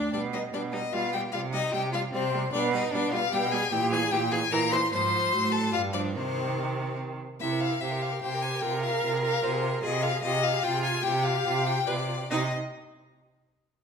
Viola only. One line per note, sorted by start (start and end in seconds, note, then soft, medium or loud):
0.00 0.12 D4 medium
0.14 0.22 G3 medium
0.33 0.41 G3 medium
0.53 0.61 G3 medium
0.73 0.81 G3 medium
0.93 1.01 G3 medium
1.14 1.22 G3 medium
1.34 1.42 G3 medium
1.54 1.62 G3 medium
1.73 1.81 G3 medium
1.94 2.02 G3 medium
2.14 2.22 G3 medium
2.34 2.42 G3 medium
2.54 2.62 G3 medium
2.73 2.81 G3 medium
2.93 3.01 G3 medium
3.13 3.21 G3 medium
3.33 3.41 G3 medium
3.52 3.60 G3 medium
3.72 3.80 E3 medium
3.92 4.00 E3 medium
4.13 4.20 E3 medium
4.32 4.40 E3 medium
4.52 4.60 E3 loud
4.72 4.80 E3 medium
4.91 5.34 F3 medium
5.32 5.74 F#3 medium
5.72 5.95 G3 medium
5.94 6.14 F3 medium
6.14 7.18 D#3 medium
7.40 7.79 E4 medium
7.83 8.22 G4 medium
8.22 8.64 G4 medium
8.62 9.84 A#4 loud
9.83 10.22 G#4 medium
10.23 10.64 G4 medium
10.63 11.03 F4 loud
11.03 11.86 G4 loud
11.87 11.95 B4 medium
12.30 12.54 D#4 medium